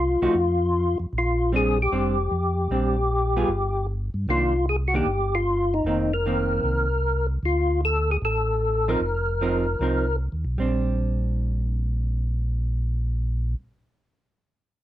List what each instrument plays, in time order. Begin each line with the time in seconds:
Already playing: tonewheel organ C2 F4
0.21 tonewheel organ C2, hollow-body jazz guitar F3 A3 D#4 F#4
0.34 tonewheel organ F2
1.00 tonewheel organ F2
1.13 tonewheel organ A#1
1.18 tonewheel organ F4
1.52 hollow-body jazz guitar G3 C4 D4, tonewheel organ G#4
1.82 tonewheel organ G4
1.91 tonewheel organ F1, hollow-body jazz guitar G3 C4 D4
2.31 tonewheel organ F2
2.70 tonewheel organ A#1, hollow-body jazz guitar G3 C4 D4
3.36 hollow-body jazz guitar G3 B3 F4 G#4
3.48 tonewheel organ G1
4.14 tonewheel organ G2
4.28 tonewheel organ C2 F4, hollow-body jazz guitar D#3 A#3 D4
4.69 tonewheel organ G#4
4.88 tonewheel organ F#4
4.94 hollow-body jazz guitar D#3 A#3 D4, tonewheel organ G4
5.06 tonewheel organ G1
5.35 tonewheel organ F4
5.74 tonewheel organ D#4
5.84 tonewheel organ F1, hollow-body jazz guitar D#3 A#3 C4
6.13 tonewheel organ A#4
6.26 hollow-body jazz guitar D#3 A#3 C4
6.63 tonewheel organ C2
7.43 tonewheel organ D2 F4
7.85 tonewheel organ A4
8.11 tonewheel organ G#4
8.22 tonewheel organ A1 A4
8.88 hollow-body jazz guitar F3 C4 D#4 A#4, tonewheel organ A#4
9.00 tonewheel organ F1
9.41 hollow-body jazz guitar F3 C4 D#4 A#4
9.79 tonewheel organ C2, hollow-body jazz guitar F3 C4 D#4 A#4
10.32 tonewheel organ D#2
10.45 tonewheel organ B1
10.58 tonewheel organ A#1, hollow-body jazz guitar G3 C4 D4